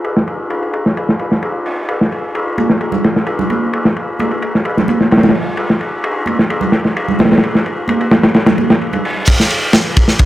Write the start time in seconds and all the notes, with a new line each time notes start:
0.04 ride
0.17 snare
0.27 ride
0.50 ride
0.63 ride
0.73 ride
0.86 snare
0.97 ride
1.09 snare
1.19 ride
1.32 snare
1.42 ride
1.66 open hi-hat
1.89 ride
2.01 snare
2.12 ride
2.35 ride
2.58 ride, high conga
2.70 snare
2.81 ride
2.92 ride, low conga
3.04 snare, ride
3.16 snare
3.26 ride
3.39 low conga
3.50 ride, high conga
3.73 ride
3.85 snare
3.96 ride
4.19 ride, high conga
4.31 ride
4.42 ride
4.55 snare
4.65 ride
4.77 snare, low conga
4.88 ride, high conga
5.01 snare
5.11 snare, ride
5.18 snare, ride
5.23 snare, ride, low conga
5.29 snare, ride
5.35 open hi-hat
5.57 ride
5.70 snare
5.81 ride
6.04 ride
6.26 ride, high conga
6.39 snare
6.50 ride
6.61 ride, low conga
6.72 snare, ride
6.85 snare
6.97 ride
7.08 low conga
7.19 snare, ride, high conga
7.25 snare, ride
7.32 snare, ride
7.37 snare, ride
7.43 ride
7.55 snare
7.66 ride
7.88 ride, high conga
8.01 ride
8.11 snare, ride, high conga
8.23 snare, ride
8.34 snare, ride
8.46 snare, ride, low conga
8.58 ride, high conga
8.70 snare, ride
8.81 ride
8.93 ride, low conga
9.05 open hi-hat
9.27 kick, crash, ride
9.40 snare
9.50 ride
9.73 snare, ride
9.97 kick, ride
10.08 snare
10.19 kick, ride